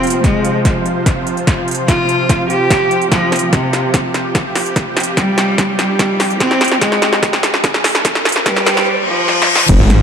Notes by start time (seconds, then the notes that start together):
Already playing: C3 F3 C4 F4 C5
0.03 closed hi-hat
0.07 closed hi-hat
0.10 closed hi-hat
0.24 G#3, kick, snare, closed hi-hat
0.45 closed hi-hat
0.65 kick, snare, closed hi-hat
0.86 closed hi-hat
1.06 kick, snare, closed hi-hat
1.27 closed hi-hat
1.37 closed hi-hat
1.47 kick, snare, closed hi-hat
1.68 closed hi-hat
1.71 closed hi-hat
1.75 closed hi-hat
1.88 F4, kick, snare, closed hi-hat
2.09 closed hi-hat
2.29 kick, snare, closed hi-hat
2.50 G4, closed hi-hat
2.71 kick, snare, closed hi-hat
2.91 closed hi-hat
3.02 closed hi-hat
3.12 F3 G4, kick, snare, closed hi-hat, riser
3.32 snare, closed hi-hat
3.36 closed hi-hat
3.39 closed hi-hat
3.53 C3, kick, snare, closed hi-hat
3.73 snare, closed hi-hat
3.94 kick, snare, closed hi-hat
4.14 snare, closed hi-hat
4.35 kick, snare, closed hi-hat
4.55 snare, open hi-hat
4.66 closed hi-hat
4.76 kick, snare, closed hi-hat
4.97 snare, closed hi-hat
5.00 closed hi-hat
5.03 closed hi-hat
5.17 G3, kick, snare, closed hi-hat
5.38 snare, closed hi-hat
5.58 kick, snare, closed hi-hat
5.79 G3, snare, closed hi-hat
5.99 kick, snare, closed hi-hat
6.20 snare, open hi-hat
6.30 closed hi-hat
6.40 C4, kick, snare, closed hi-hat
6.51 snare
6.61 snare, closed hi-hat
6.64 closed hi-hat
6.68 snare, closed hi-hat
6.81 G#3, kick, snare, closed hi-hat
6.92 snare
7.02 snare, closed hi-hat
7.13 snare
7.23 kick, snare, closed hi-hat
7.33 snare
7.43 snare, closed hi-hat
7.54 snare
7.64 kick, snare, closed hi-hat
7.74 snare
7.84 snare, open hi-hat
7.95 snare, closed hi-hat
8.05 kick, snare, closed hi-hat
8.15 snare
8.25 snare, closed hi-hat
8.29 closed hi-hat
8.32 snare, closed hi-hat
8.46 G3, kick, snare, closed hi-hat
8.56 snare
8.66 snare, closed hi-hat
8.77 snare
8.87 reverse cymbal
9.08 F3
9.28 snare
9.42 snare
9.56 snare
9.69 F1 C3 F3 F4 C5, kick, closed hi-hat, crash, impact
9.80 G#1
9.90 snare, closed hi-hat